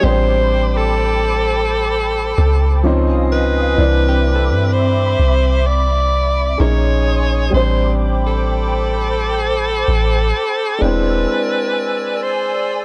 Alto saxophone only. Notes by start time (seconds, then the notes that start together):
0.04 C5
0.77 A4
3.32 B4
4.73 C5
5.67 D5
6.60 C#5
7.54 C5
8.26 A4
10.82 B4
12.23 C5